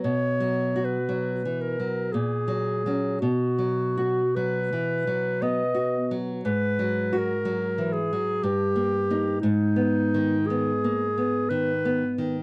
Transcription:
X:1
M:3/4
L:1/16
Q:1/4=58
K:B
V:1 name="Clarinet"
c3 B3 A2 G4 | F4 B4 d3 z | B3 A3 G2 =G4 | D4 G4 B3 z |]
V:2 name="Nylon-string guitar" clef=bass
(3B,,2 F,2 F2 (3F,2 E,2 F,2 (3A,,2 F,2 [F,C]2 | (3B,,2 F,2 F2 (3F,2 E,2 F,2 (3B,2 F2 F,2 | (3G,,2 F,2 F2 (3F,2 E,2 F,2 (3=G,,2 A,2 [A,D]2 | (3G,,2 B,2 D,2 (3B,2 A,2 B,2 (3D,2 B,2 D,2 |]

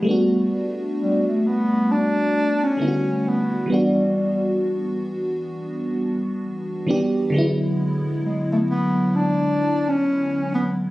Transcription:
X:1
M:4/4
L:1/16
Q:"Swing 16ths" 1/4=66
K:Edor
V:1 name="Bass clarinet"
z4 G, A, B,2 D3 C3 B,2 | G,4 z12 | z4 ^G, A, B,2 D3 C3 B,2 |]
V:2 name="FM electric piano"
[G,A,B,DF]12 [D,G,A,B,EF]4 | [E,G,B,DF]12- [E,G,B,DF]2 [E,G,B,DG]2 | [D,F,^G,B,E]16 |]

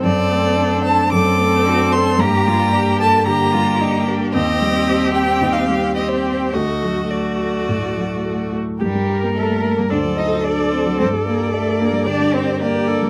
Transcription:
X:1
M:4/4
L:1/16
Q:1/4=111
K:Gm
V:1 name="Violin"
d6 a2 d'6 c'2 | b6 a2 b6 z2 | e6 g3 f3 e c3 | e4 d8- d2 z2 |
G4 A3 B d2 e2 d4 | c2 B2 A2 B2 d2 c2 B4 |]
V:2 name="Violin"
A8 A8 | G8 G8 | G12 G4 | ^F4 F8- F2 z2 |
B8 c4 d2 c2 | d12 d4 |]
V:3 name="Cello"
C4 D4 A4 ^F2 A2 | G2 F2 G2 A2 G2 F2 E2 D2 | C4 G4 E2 G6 | ^F12- F2 z2 |
G,4 A,3 B, D2 E2 D4 | C2 B,2 A,2 B,2 D2 C2 B,4 |]
V:4 name="Viola"
C8 C8 | B,8 B,8 | C12 C4 | A,4 A,8- A,2 z2 |
G2 B6 A8- | A8 G4 G2 A2 |]
V:5 name="Grand piano"
^F,,2 A,2 D2 c2 F,,2 A,2 D2 c2 | G,,2 G,2 D2 B2 D,2 G,2 D2 B2 | E,,2 G,2 C2 G2 E,,2 G,2 C2 G2 | D,,2 ^F,2 A,2 A2 A,,2 F,2 A,2 A2 |
G,, G, G B, B G B, G, D,, ^F, A ^F c A C F, | G,, G, B G d B D G, D, G, B G d B D G, |]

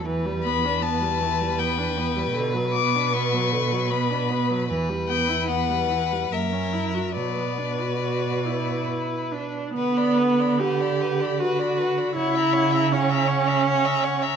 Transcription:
X:1
M:3/4
L:1/16
Q:1/4=76
K:Bm
V:1 name="Violin"
z2 b2 a4 g4 | z2 d'2 c'4 b4 | z2 g2 f4 e4 | d8 z4 |
f b f b f b f b f b f b | f ^a f a f a f a f a f a |]
V:2 name="Violin"
B12- | B12 | B8 ^A4 | B8- B3 z |
B d B d B d B d B d B d | c e c e c e c e c e c e |]
V:3 name="Viola"
E, G, B, D B, G, E, G, B, D B, G, | D, F, B, D B, F, D, F, B, D B, F, | E, G, B, E B, G, E, G, ^A, C E F | F, B, D F F2 E4 D2 |
B,4 G4 F4 | E4 C8 |]
V:4 name="Cello" clef=bass
E,,12 | B,,12 | E,,8 F,,4 | B,,8- B,,3 z |
D,12 | C,12 |]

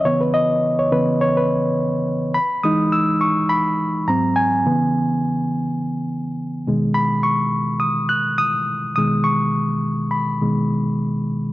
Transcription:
X:1
M:4/4
L:1/16
Q:"Swing 16ths" 1/4=104
K:B
V:1 name="Reed electric piano"
c B d3 c B2 c B4 z3 | b2 d'2 e'2 c'2 b4 a2 g2- | g8- g2 z6 | b2 c'4 d'2 f'2 d'4 d'2 |
c'6 b8 z2 |]
V:2 name="Reed electric piano" clef=bass
[C,E,B,]6 [C,E,B,]2 z8 | z2 [E,G,D]8- [E,G,D]2 [G,,F,^B,]2 z2 | [C,E,B,]6 z8 [B,,D,G,]2 | z12 z2 [B,,D,G,]2- |
[B,,D,G,]8 [B,,D,G,]2 z6 |]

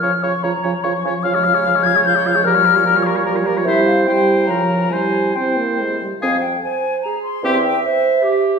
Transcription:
X:1
M:3/4
L:1/16
Q:1/4=148
K:Bbdor
V:1 name="Flute"
f'2 d'2 b4 d'4 | [K:Fm] f'6 a'2 g'4 | f'6 d'2 z4 | =e2 f2 g4 b4 |
a4 g4 z4 | f2 g2 a4 b2 c'2- | c'2 g2 =e6 z2 |]
V:2 name="Oboe"
d2 d2 d2 d2 d2 d2 | [K:Fm] f d f d f d f d f d f d | B d B d B d B d B d B d | c4 c4 B4 |
c4 c6 z2 | A2 z8 z2 | G2 z8 z2 |]
V:3 name="Clarinet"
F2 F2 F2 F2 F2 F2 | [K:Fm] F A F A F A F A F A F A | G F G F G F G F G F G F | =E4 E4 F4 |
=E4 E6 z2 | z4 c4 A4 | =e4 c4 G4 |]
V:4 name="French horn" clef=bass
F,2 F,2 F,2 F,2 F,2 F,2 | [K:Fm] F, A, F, A, F, A, F, A, F, A, F, A, | F, G, F, G, F, G, F, G, F, G, F, G, | G,4 G,4 F,4 |
G,4 C2 B,2 A,2 G,2 | C2 z8 z2 | C2 z8 z2 |]
V:5 name="Bassoon" clef=bass
D,2 D,2 D,2 D,2 D,2 D,2 | [K:Fm] D,12 | B,,12 | C,8 D,4 |
C,8- C,2 z2 | F,,4 z8 | =E,,4 z8 |]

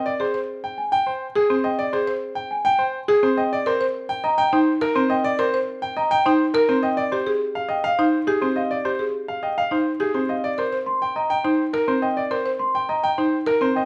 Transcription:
X:1
M:3/4
L:1/16
Q:1/4=104
K:Eb
V:1 name="Celesta"
z4 z a g z4 g | z4 z a g z4 g | z4 z b g z4 g | z4 z b g z4 g |
z4 z g f z4 f | z4 z g f z4 f | z3 c' z b g z4 g | z3 c' z b g z4 g |]
V:2 name="Grand piano"
d c z2 g z g c z A c e | d c z2 g z g c z A c e | d c z2 g e g c z B c e | d c z2 g e g c z B c e |
d c z2 f e f c z A c e | d c z2 f e f c z A c e | d c z2 g e g c z B c e | d c z2 g e g c z B c e |]
V:3 name="Marimba"
z A c z6 A C z | z A c z6 A C z | z B c z4 E z B C z | z B c z4 E z B C z |
z G A z4 E z G C z | z G A z4 E z G C z | z B c z4 E z B C z | z B c z4 E z B C z |]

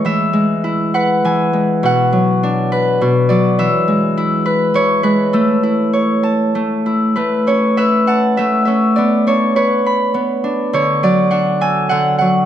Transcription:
X:1
M:3/4
L:1/8
Q:1/4=101
K:A
V:1 name="Harp"
e3 f g2 | f3 z2 d | e2 z2 c B | A4- A z |
B c e f e e | d c B3 z | c d f g f f |]
V:2 name="Harp"
[E,G,B] G, E B E, G, | B,, F, D B B,, F, | E, G, E B E, G, | A, E c a A, E |
A, C B a A, C | B, D c b B, D | D, F, D A D, F, |]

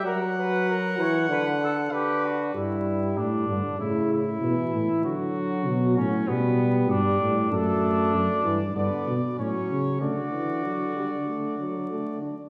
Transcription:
X:1
M:4/4
L:1/8
Q:1/4=96
K:Glyd
V:1 name="Trumpet"
f6 B2 | z8 | z8 | [K:D] A2 d2 d2 c2 |
d6- d z |]
V:2 name="Trumpet"
^A B A c B =A G F | E2 D2 E E3 | F3 C B,2 D2 | [K:D] D4 B, z C2 |
F6- F z |]
V:3 name="Euphonium" clef=bass
F,3 E, D,2 D,2 | G,3 D, C,2 E,2 | F,4 G,4 | [K:D] A,3 E, D, z F,2 |
A, E, F, G, A, F, A, D |]
V:4 name="Bass trombone" clef=bass
z8 | G,,2 A,, G,, A,,2 B,, A,, | D,2 B,, A,, B,,2 G,, A,, | [K:D] F,,2 F,, G,, G,, B,, A,, C, |
D,6- D, z |]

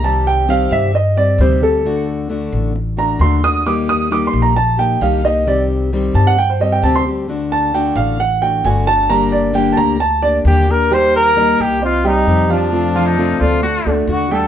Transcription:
X:1
M:4/4
L:1/16
Q:1/4=132
K:Cdor
V:1 name="Grand piano"
a2 g2 f2 =e2 _e2 d2 c2 A2- | A2 z8 b2 c'2 e'2 | d'2 e'2 (3d'2 c'2 b2 a2 g2 f2 e2 | d2 z4 a ^f g c e g a c' z2 |
z2 a2 g2 f2 ^f2 g2 _a2 =a2 | b2 d2 g2 [ab]2 a2 d2 z4 | [G,Gg]4 [B,Be]4 [Cce]2 [G,Gg]4 [F,Ff]2- | [F,Ff]2 [F,Ff]4 [A,Ad]4 [A,Ad]4 [G,Gg]2 |]
V:2 name="Flugelhorn"
z16 | z16 | z16 | z16 |
z16 | z12 G2 B2 | c2 B4 G2 F2 E4 D2- | D8- D2 z2 ^F2 A2 |]
V:3 name="Trumpet"
z16 | z16 | z16 | z16 |
z16 | z16 | z16 | z2 F E3 F2 ^F3 z4 z |]
V:4 name="Steel-string acoustic guitar"
[C,E,G,CG]4 [C,E,G,CG]4 z2 [G,CG]2 [C,E,G,CG]2 [G,CG]2 | [D,A,D^F]4 [D,A,DF]4 z2 [A,DF]2 [D,A,DF]2 [A,DF]2 | [E,G,B,EG]4 [E,G,B,EG]4 z2 [B,EG]2 [E,G,B,EG]2 [B,EG]2 | [C,E,G,CG]4 [C,E,G,CG]4 z2 [G,CG]2 [C,E,G,CG]2 [G,CG]2 |
[D,A,D^F]4 [D,A,DF]4 z2 [A,DF]2 [D,A,DF]2 [A,DF]2 | [D,G,B,DG]4 [D,G,B,DG]4 z2 [B,DG]2 [D,G,B,DG]2 [B,DG]2 | [E,G,B,EG]4 [E,G,B,EG]4 z2 [G,CG]2 [C,E,G,CG]2 [G,CG]2 | [C,F,A,CF]4 [C,F,A,CF]4 z2 [A,D^F]2 [D,A,DF]2 [A,DF]2 |]
V:5 name="Upright bass" clef=bass
C,,6 G,,6 D,,4- | D,,6 A,,,6 E,,4- | E,,6 B,,,6 C,,4- | C,,6 G,,6 D,,4- |
D,,6 A,,,6 G,,,4- | G,,,6 D,,6 E,,4- | E,,6 C,,6 F,,4- | F,,6 D,,4 D,,2 E,,4 |]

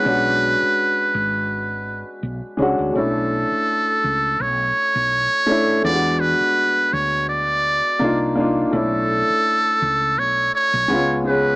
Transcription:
X:1
M:4/4
L:1/16
Q:"Swing 16ths" 1/4=83
K:Bdor
V:1 name="Muted trumpet"
B12 z4 | A8 c8 | d2 B4 c2 d6 z2 | A8 c2 c4 B2 |]
V:2 name="Upright piano"
[G,CDF]8 z6 [G,CDF]2 | [A,CDE]8 z6 [A,CDE]2 | [G,B,D^EF]8 z4 [_B,D_E=F]2 [B,DEF]2 | [A,CDE]8 z4 [G,B,C^E]2 [G,B,CG]2 |]
V:3 name="Fretless electric bass" clef=bass
B,,,3 z3 G,,,4- G,,, z B,,, z C,, D,, | B,,,3 z3 C,,2 B,,,2 z B,,,2 z3 | E,,3 z3 D,,4- D,, z =C,,4 | B,,,3 z3 C,,2 B,,,2 z B,,, C,,4 |]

